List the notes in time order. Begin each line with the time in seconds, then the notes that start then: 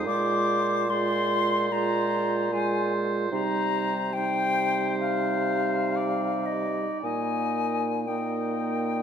0.06 A#2 G#3 F4 C5 D6
0.89 G#3 F4 C5 C6
1.71 G#3 F4 C5 A#5
2.52 G#3 F4 C5 G#5
3.31 C3 G3 D#4 C5 A#5
4.13 G3 D#4 C5 G5
5.00 F5
5.96 D5
6.46 D#5
7.02 A#2 A#3 D#4 D#5 G#5
8.08 A#3 D#4 D#5 G5